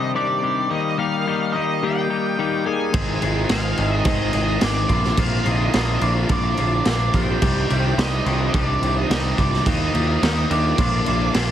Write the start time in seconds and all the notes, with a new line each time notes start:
Already playing: C3 D#3 G3 D4 G4 C5 D#5 G5 D6
0.15 C3 D#3 G3 D4 G4 D5
0.42 C3 D#3 G3 D4 G4
0.70 D#3 G3 A#3 D#4 G4 A#4 D#5 G5 D#6
0.98 D#3 G3 A#3 D#4 G4 F5
1.27 D#3 G3 A#3 D#4 G4
1.53 D#3 G3 A#3 D#4 G4 D#5
1.82 D#3 G3 A#3 D#4 G4 G5
2.09 D#3 G3 A#3 D#4 G4
2.38 D#3 G3 A#3 D#4 G4
2.65 D#3 G3 A#3 D#4 G4 G#4 G#5
2.92 G#1 G#2 D#3 G#3 C4 D#4 G#4 C5 G#5, kick, crash
3.21 G#1 G#2 D#3 G#3 C4 D#4 G#4, crash
3.49 G#1 G#2 D#3 G#3 C4 D#4 F4 G#4 F5, snare, crash
3.77 G#1 G#2 D#3 G#3 C4 D#4 G#4, crash
3.95 D#5
4.04 G#1 G#2 D#3 G#3 C4 D#4 G#4 D#5, kick, crash
4.33 G#1 G#2 D#3 G#3 C4 D#4 G#4 D#5, crash
4.61 G#1 G#2 D#3 G#3 C4 D4 D#4 G#4 D5, snare, crash
4.88 A#1 A#2 D3 F3 A#3 C4 D4 F4 A#5 D6, kick, crash
5.04 snare
5.16 A#1 A#2 D3 F3 A#3 C4 D4 F4 F5, kick, crash
5.44 A#1 A#2 D3 F3 A#3 C4 D4 D#4 F4 D#5, crash
5.73 A#1 A#2 D3 F3 A#3 C4 D4 F4, snare, crash
6.01 A#1 A#2 D3 F3 A#3 C4 D4 F4 D5, crash
6.29 A#1 A#2 D3 F3 A#3 C4 D4 F4 D5, kick, crash
6.57 A#1 A#2 D3 F3 A#3 C4 D4 F4, crash
6.85 A#1 A#2 D3 F3 A#3 C4 D4 F4, snare, crash
7.14 A#1 A#2 D3 F3 A#3 C4 D4 F4 G4 G5, kick, crash
7.42 C2 C3 D#3 G3 C4 D4 D#4 G4 G5, kick, crash
7.69 C2 C3 D#3 G3 C4 D4 D#4 G4, crash
7.97 C2 C3 D#3 G3 C4 D4 D#4 G4 D#5, snare, crash
8.26 C2 C3 D#3 G3 C4 D4 D#4 G4, crash
8.54 C2 C3 D#3 G3 C4 D4 D#4 G4 D5, kick, crash
8.81 C2 C3 D#3 G3 C4 D4 D#4 G4, crash
8.96 D#4 D#5
9.10 C2 C3 D#3 G3 C4 D4 D#4 G4, snare, crash
9.38 C2 C3 D#3 G3 C4 D4 D#4 G4 D5, kick, crash
9.54 snare
9.66 D#2 D#3 G3 A#3 D#4 G4 A#4 D#5 G5 D#6, kick, crash
9.94 D#2 D#3 G3 A#3 D#4 G4, crash
10.22 D#2 D#3 G3 A#3 D#4 G4, snare, crash
10.50 D#2 D#3 G3 A#3 D4 D#4 G4 D5, crash
10.78 A#1 A#2 D3 F3 A#3 D4 F4 A#4 F5 D6, kick, crash
11.06 A#1 A#2 D3 F3 A#3 D4 F4, crash
11.34 A#1 A#2 D3 F3 A#3 D4 F4, snare, crash